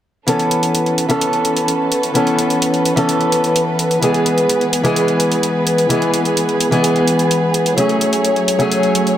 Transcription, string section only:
0.28 E3 C#4 A4 B4
4.03 B3 G#4
7.78 F#3 A3 C#5

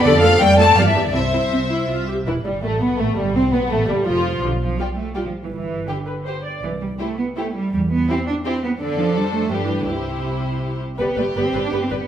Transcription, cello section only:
0.05 D3
0.23 F3
0.41 G3
0.58 A3
0.77 F3
0.86 E3
1.04 D3
1.14 C3
2.26 E3
2.45 G3
2.63 A3
2.81 B3
2.99 A3
3.17 G3
3.35 C4
3.53 B3
3.71 A3
3.89 G3
4.07 F3
4.43 D3
4.61 F3
4.78 G3
4.96 A3
5.14 G3
5.25 F3
5.43 E3
5.52 E3
5.89 D3
6.63 E3
6.81 G3
7.00 A3
7.18 B3
7.36 A3
7.54 G3
7.72 G3
7.91 B3
8.09 C4
8.27 D4
8.45 C4
8.63 B3
8.80 D3
8.99 F3
9.16 G3
9.34 A3
9.52 F3
9.63 E3
9.80 D3
9.88 C3
10.99 B3
11.17 A3
11.36 B3
11.46 C4
11.64 D4
11.71 B3
11.82 C4
12.00 B3

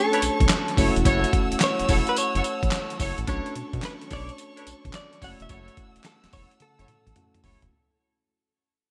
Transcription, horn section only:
0.12 D4 A4 B4 C#5
0.76 E4 F#4 A4 C#5
1.05 E4 F#4 A4 C#5
1.88 E4 F#4 A4 C#5
2.35 E4 F#4 A4 C#5
3.00 E4 F#4 A4 C#5
3.27 D4 A4 B4 C#5
4.11 D4 A4 B4 C#5
4.56 D4 A4 B4 C#5
5.21 E4 F#4 A4 C#5
5.49 E4 F#4 A4 C#5
6.32 E4 F#4 A4 C#5
6.78 E4 F#4 A4 C#5
7.44 E4 F#4 A4 C#5

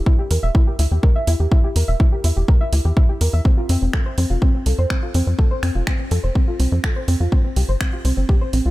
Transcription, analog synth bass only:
0.31 E2
0.43 E1
0.79 D2
0.91 E2
1.27 E2
1.40 E2
1.76 E2
1.88 E1
2.24 E2
2.36 E1
2.73 D2
2.85 E2
3.21 E2
3.33 E2
3.69 F2
3.82 F1
4.18 F2
4.30 F1
4.66 C2
4.78 F2
5.15 F2
5.27 F2
5.63 F2
5.75 F1
6.11 F2
6.24 F1
6.60 C2
6.72 F2
7.08 F2
7.20 F2
7.56 C2
7.69 G1
8.05 C2
8.17 G1
8.53 A#1
8.65 C2

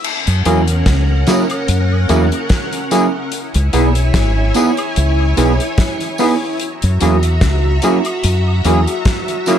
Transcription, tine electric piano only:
0.46 A#3 C#4 E4 G#4
1.27 A#3 C#4 E4 G#4
2.09 A#3 C#4 E4 G#4
2.33 E4 G#4
2.91 A#3 C#4 E4 G#4
3.73 B3 D#4 E4 G#4
4.56 B3 D#4 E4 G#4
4.79 E4 G#4
5.37 B3 D#4 E4 G#4
6.19 B3 D#4 E4 G#4
6.43 E4 G#4
7.02 A#3 C#4 E4 G#4
7.83 A#3 C#4 E4 G#4
8.65 A#3 C#4 E4 G#4
8.89 E4 G#4
9.48 A#3 C#4 E4 G#4

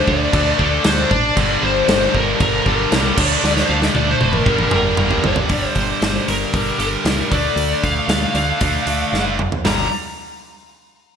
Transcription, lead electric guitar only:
0.08 D5
0.60 A4
0.85 C5
1.10 D5
1.63 C5
2.16 A#4
2.42 A#4
2.68 A#4
3.06 A4
3.19 D5
3.70 F5
3.96 D5
4.10 C5
4.21 A#4
4.73 A#4
5.26 D5
5.68 C5
5.76 C5
6.29 A#4
6.79 A#4
7.32 D5
7.84 F5
8.09 F5
8.36 F5
9.66 A#5

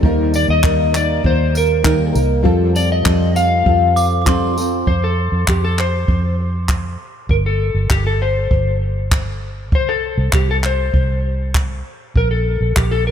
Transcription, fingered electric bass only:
0.03 D#2
0.49 D#2
1.24 D#2
2.15 C2
2.45 F2
3.06 F2
3.66 F2
4.87 F2
5.32 F2
5.48 F2
6.08 F2
7.29 G1
7.74 G1
7.90 G1
8.51 G1
9.72 C2
10.18 C2
10.33 C2
10.94 C2
12.16 A#1
12.61 A#1
12.77 A#1

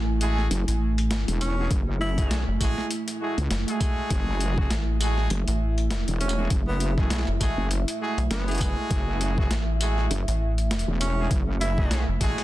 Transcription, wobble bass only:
0.51 F#1
1.28 E1
1.71 F#1
3.38 C#2
4.11 F#1
5.30 F#1
6.08 E1
6.50 F#1
7.58 F#1
8.30 F#1
8.90 F#1
10.11 F#1
10.88 E1
11.31 F#1

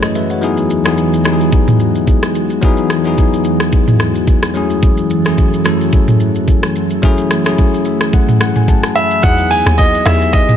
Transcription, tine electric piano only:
Already playing: F#3 A3 C#4 E4 G#4 B4 C#5
0.03 A4 D#5
0.15 B4 E5
0.30 C#5 F#5
0.41 F#3 B3 D#4 E4 G#4
0.84 F#3 B3 D#4 E4 G#4
1.24 F#3 B3 D#4 E4 G4
1.33 G#4
2.62 F#3 B3 D#4 E4 G#4
3.04 F#3 B3 D#4 E4 G#4
4.54 F#3 A3 C#4 E4 G#4
5.25 F#3 A3 C#4 E4 G#4
5.65 F#3 A3 C#4 E4 A4
7.02 F#3 A3 C#4 E4 G#4
7.45 F#3 A3 C#4 E4 G#4
7.86 E5
8.13 F#5
8.41 F#5
8.56 G#5
8.69 A5
8.96 B5
9.22 F#3 B3 D#4 E4 G#4
10.05 F#3 B3 D#4 E4 G4
10.14 G#4

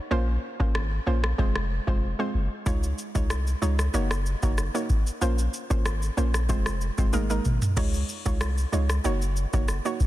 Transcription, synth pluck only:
0.11 A#3 C#4 F4 C5
0.60 A#3 C#4 F4 C5
1.06 A#3 C#4 F4 C5
1.38 G#3 C4 F4 C5
1.87 G#3 C4 F4 C5
2.19 G#3 C4 F4 C5
2.66 G#3 D#4 F4 C#5
3.15 G#3 D#4 F4 C#5
3.62 G#3 D#4 F4 C#5
3.94 A#3 D#4 F#4 C#5
4.43 A#3 D#4 F#4 C#5
4.74 A#3 D#4 F#4 C#5
5.21 A#3 C#4 F4 C5
5.70 A#3 C#4 F4 C5
6.17 A#3 C#4 F4 C5
6.49 G#3 C4 F4 C5
6.98 G#3 C4 F4 C5
7.13 G#3 A#3 D#4 A#4
7.30 G#3 A#3 D#4 A#4
7.77 G#3 D#4 F4 C#5
8.26 G#3 D#4 F4 C#5
8.72 G#3 D#4 F4 C#5
9.04 A#3 D#4 F#4 C#5
9.53 A#3 D#4 F#4 C#5
9.85 A#3 D#4 F#4 C#5

